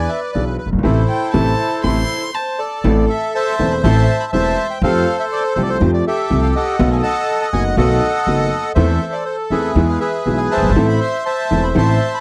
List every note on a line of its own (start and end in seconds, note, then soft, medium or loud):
0.00 0.57 B4 medium
0.00 0.31 D5 medium
0.00 0.10 G#5 loud
0.09 0.20 E5 medium
0.33 0.56 B1 medium
0.33 0.56 B2 medium
0.33 0.55 E3 soft
0.33 0.56 B3 soft
0.33 0.56 D4 soft
0.33 0.56 G#4 medium
0.33 0.44 D5 medium
0.58 0.70 B4 medium
0.66 0.72 F#1 soft
0.66 0.72 F#1 medium
0.73 0.78 G1 medium
0.78 0.84 G#1 medium
0.83 1.03 A1 medium
0.83 1.00 C3 medium
0.83 1.00 E3 medium
0.83 1.00 A3 medium
0.83 2.30 E4 medium
0.83 2.30 A4 medium
0.83 2.30 C5 medium
1.08 1.32 G5 medium
1.33 1.53 A1 loud
1.33 1.50 C3 medium
1.33 1.50 E3 medium
1.33 1.50 A3 medium
1.33 1.81 A5 medium
1.84 2.02 A1 medium
1.84 2.00 C3 medium
1.84 2.00 E3 medium
1.84 2.00 A3 medium
1.84 2.36 C6 loud
2.32 2.59 C5 medium
2.32 2.85 A5 medium
2.59 3.55 A4 medium
2.59 3.05 D5 medium
2.84 3.05 A1 loud
2.84 3.06 A1 medium
2.84 3.06 A2 medium
2.84 3.05 E3 medium
2.84 3.05 A3 medium
2.84 3.06 C4 medium
2.84 3.06 A4 medium
3.10 3.34 E5 loud
3.35 4.30 C5 medium
3.35 3.82 E5 medium
3.35 3.73 A5 loud
3.59 3.80 E1 medium
3.59 3.80 E2 medium
3.59 3.80 E3 soft
3.59 3.80 A3 soft
3.59 3.80 C4 soft
3.59 3.80 A4 medium
3.71 3.77 B5 medium
3.84 4.04 A1 loud
3.84 4.05 A1 medium
3.84 4.05 A2 medium
3.84 4.05 E3 medium
3.84 4.05 A3 medium
3.84 4.05 C4 medium
3.84 4.05 A4 medium
3.84 4.31 E5 medium
3.84 4.31 A5 medium
3.84 4.18 C6 loud
4.20 4.25 B5 medium
4.33 4.54 E1 medium
4.33 4.54 E2 medium
4.33 4.54 E3 medium
4.33 4.54 A3 soft
4.33 4.55 C4 soft
4.33 4.54 A4 medium
4.33 4.79 C5 medium
4.33 4.79 E5 medium
4.33 4.67 A5 loud
4.70 4.82 G5 medium
4.82 5.03 F2 loud
4.82 5.04 F2 medium
4.82 5.04 F3 medium
4.82 5.04 A3 medium
4.82 5.04 C4 medium
4.82 5.04 G4 medium
4.82 5.77 A4 medium
4.82 5.54 C5 medium
4.82 5.17 F5 loud
5.20 5.25 E5 medium
5.32 5.43 D5 loud
5.55 5.77 C2 medium
5.55 5.77 C3 medium
5.55 5.77 F3 medium
5.55 5.77 A3 medium
5.55 5.78 C4 soft
5.55 5.77 G4 medium
5.55 5.62 C5 loud
5.63 5.70 D5 medium
5.69 5.91 C5 loud
5.81 6.01 F2 loud
5.81 6.02 F2 medium
5.81 6.02 F3 medium
5.81 6.02 A3 medium
5.81 6.02 C4 medium
5.81 6.02 G4 medium
5.94 6.05 D5 medium
6.07 6.76 G4 medium
6.07 6.55 A4 medium
6.07 6.41 E5 loud
6.30 6.51 C2 medium
6.30 6.51 C3 medium
6.30 6.50 F3 medium
6.30 6.51 A3 soft
6.30 6.51 C4 soft
6.30 6.51 G4 medium
6.43 6.48 F5 loud
6.56 7.50 A4 medium
6.56 7.02 D#5 medium
6.56 6.90 F#5 loud
6.79 7.00 B1 loud
6.79 7.00 B1 medium
6.79 7.00 B2 medium
6.79 7.00 D#3 medium
6.79 7.00 A3 medium
6.79 7.00 B3 medium
6.79 7.00 F#4 medium
6.92 6.97 G#5 medium
7.03 7.76 D#5 medium
7.03 7.76 F#5 medium
7.03 7.40 A5 loud
7.41 7.47 A5 loud
7.53 7.73 F#1 medium
7.53 7.74 F#2 medium
7.53 7.73 D#3 medium
7.53 7.73 A3 soft
7.53 7.74 B3 soft
7.53 7.74 F#4 medium
7.53 7.64 G#5 loud
7.77 7.98 B1 medium
7.77 7.98 B2 medium
7.77 7.98 D#3 medium
7.77 7.98 A3 medium
7.77 7.98 B3 medium
7.77 7.98 F#4 medium
7.77 8.72 A4 medium
7.77 8.72 D#5 medium
7.77 8.72 F#5 loud
8.27 8.47 F#1 medium
8.27 8.47 F#2 medium
8.27 8.47 D#3 soft
8.27 8.47 A3 soft
8.27 8.48 B3 soft
8.27 8.47 F#4 medium
8.75 8.97 E2 loud
8.75 8.97 E2 medium
8.75 8.97 E3 medium
8.75 8.97 A3 medium
8.75 8.97 C4 medium
8.75 9.71 A4 medium
8.75 8.97 A4 medium
8.75 9.24 C5 medium
8.75 9.14 E5 medium
9.12 9.24 D5 medium
9.25 9.36 C5 medium
9.50 9.71 E2 medium
9.50 9.72 E2 medium
9.50 9.72 E3 medium
9.50 9.72 A3 soft
9.50 9.72 C4 soft
9.50 9.99 G#4 medium
9.50 9.72 A4 medium
9.50 9.99 B4 medium
9.50 9.89 E5 medium
9.76 9.96 E2 loud
9.76 9.97 E2 medium
9.76 9.97 E3 medium
9.76 9.97 G#3 medium
9.76 9.97 B3 medium
9.76 9.97 G#4 medium
9.89 10.00 F5 medium
10.00 10.72 G#4 medium
10.00 10.72 B4 medium
10.00 10.39 E5 medium
10.26 10.47 B1 medium
10.26 10.47 B2 medium
10.26 10.47 E3 medium
10.26 10.47 G#3 soft
10.26 10.47 B3 soft
10.26 10.47 G#4 medium
10.38 10.51 G#5 medium
10.51 11.24 C5 medium
10.51 11.24 E5 medium
10.51 10.86 A5 loud
10.57 10.62 F#1 soft
10.57 10.64 F#1 medium
10.62 10.68 G1 medium
10.62 10.70 G1 medium
10.69 10.75 G#1 medium
10.69 10.76 G#1 medium
10.75 10.96 A1 medium
10.75 10.97 A1 medium
10.75 10.97 A2 medium
10.75 10.97 E3 medium
10.75 10.97 A3 medium
10.75 10.97 C4 medium
10.75 10.97 A4 medium
10.88 11.00 B5 medium
11.01 11.27 C6 loud
11.26 12.20 C5 medium
11.26 11.77 E5 medium
11.26 11.64 A5 loud
11.51 11.71 E1 medium
11.51 11.71 E2 medium
11.51 11.71 E3 medium
11.51 11.71 A3 soft
11.51 11.71 C4 soft
11.51 11.71 A4 medium
11.63 11.69 B5 medium
11.75 11.96 A1 medium
11.75 11.96 A1 loud
11.75 11.96 A2 medium
11.75 11.96 E3 medium
11.75 11.96 A3 medium
11.75 11.96 C4 medium
11.75 11.96 A4 medium
11.75 12.20 E5 medium
11.75 12.20 A5 medium
11.75 12.14 C6 loud
12.14 12.19 B5 medium